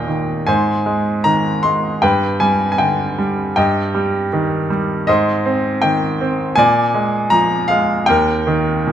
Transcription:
Already playing: D#2 A#2 D#3 G4 D5 D#5 F5 G5
0.08 D#3
0.47 G#2 C5 G#5
0.86 G#3
1.24 D#3 A#5
1.63 G#3 C6
2.02 G2 B4 G5
2.40 G3 G#5
2.72 G#5
2.78 D3 G5
3.18 G3
3.56 G2 D#5 G5
3.95 G3
4.33 D#3
4.70 G3
5.07 G#2 C5 D#5
5.46 C4
5.82 D#3 G5
6.21 C4
6.56 A#2 D5 G#5
6.94 G#3
7.30 F3 A#5
7.68 G#3 F5
8.06 D#2 A#4 G5
8.47 D#3
8.86 A#2

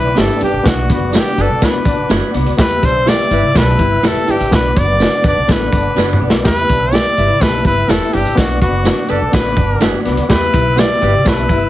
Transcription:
Already playing: B1 E4 B4 D5 G5 D6
0.15 G1 D3 B3 D4 E4 G4 B4, snare, closed hi-hat, tambourine
0.20 A4
0.30 closed hi-hat
0.41 G1 D4 G4 B4, closed hi-hat
0.54 A1
0.63 B1 B3 D4 F#4 D5 F#5, kick, snare, closed hi-hat, tambourine
0.68 F#4
0.90 F#1 B3 F#4, kick, closed hi-hat
1.13 F#3 B3 D4 F#4 B4, snare, closed hi-hat, tambourine
1.17 G4
1.38 F#1 F#3 D4 A4 B4, closed hi-hat
1.50 B1
1.62 F#3 B3 D4 F#4 B4, kick, snare, closed hi-hat, tambourine
1.74 muted upright bass stroke
1.85 A1 D4, kick, closed hi-hat
2.09 F#1 F#3 B3 D4 F#4 B4, snare, closed hi-hat, tambourine
2.34 C2 B3, closed hi-hat
2.46 D2, closed hi-hat
2.58 E2 B3 E4 G4 B4 E5 G5 E6, kick, snare, closed hi-hat, tambourine
2.83 B1 D4 C5, kick, closed hi-hat
3.06 G3 B3 E4 G4 B4 D5, snare, closed hi-hat, tambourine
3.31 G1 G3 E4 B4, closed hi-hat
3.43 C2
3.55 B1 G3 B3 D4 E4 G4 B4, kick, snare, closed hi-hat, tambourine
3.79 G1 E4, kick, closed hi-hat
4.03 E1 G3 B3 E4 G4 B4, snare, closed hi-hat, tambourine
4.07 A4
4.27 G1 D4 E4 G4 B4, closed hi-hat
4.40 A1, closed hi-hat
4.51 B1 B3 D4 F#4 B4 D5 F#5 D6, kick, snare, closed hi-hat, tambourine
4.76 F#1 B3 D5, kick, closed hi-hat
4.99 F#3 B3 D4 F#4 B4, snare, closed hi-hat, tambourine
5.23 F#1 F#3 D4 B4, kick, closed hi-hat
5.27 D5
5.36 B1
5.48 A1 F#3 B3 D4 A4 B4, kick, snare, closed hi-hat, tambourine
5.73 G1 D4, kick, closed hi-hat
5.96 F#1 F#3 B3 D4 F#4 B4, snare, tambourine
6.13 mid tom
6.21 B1 B3
6.30 snare
6.43 E2 B3 E4 G4 B4 E5 E6, kick, snare, closed hi-hat, tambourine
6.69 B1 D4, kick, closed hi-hat
6.92 G3 B3 E4 G4 B4 D5, snare, closed hi-hat, tambourine
7.17 G1 G3 E4 B4, closed hi-hat
7.30 C2
7.40 B1 G3 B3 D4 E4 G4 B4, kick, snare, closed hi-hat, tambourine
7.65 G1 E4 B4, kick, closed hi-hat
7.88 E1 G3 B3 E4 G4 A4 B4, snare, closed hi-hat, tambourine
8.01 closed hi-hat
8.13 G1 D4 E4 G4 B4, closed hi-hat
8.25 A1, closed hi-hat
8.35 B1 B3 D4 F#4 D5 F#5 D6, kick, snare, closed hi-hat, tambourine
8.62 F#1 B3 F#4, kick, closed hi-hat
8.84 F#3 B3 D4 F#4 B4, snare, closed hi-hat, tambourine
9.08 F#1 F#3 D4 A4 B4, closed hi-hat
9.22 B1
9.32 A1 F#3 B3 D4 F#4 B4, kick, snare, closed hi-hat, tambourine
9.57 G1 D4, kick, closed hi-hat
9.80 F#1 F#3 B3 D4 F#4 B4, snare, closed hi-hat, tambourine
10.05 C2 B3, snare, closed hi-hat
10.17 D2, closed hi-hat
10.29 E2 B3 E4 G4 B4 E5 E6, kick, snare, closed hi-hat, tambourine
10.53 B1 E4, kick, closed hi-hat
10.76 G3 B3 E4 F#4 G4 B4 D5, snare, closed hi-hat, tambourine
11.02 G1 G3 E4 G4 B4, closed hi-hat
11.14 C2
11.25 B1 G3 B3 D4 E4 G4 B4, kick, snare, closed hi-hat, tambourine
11.49 G1 E4, kick, closed hi-hat

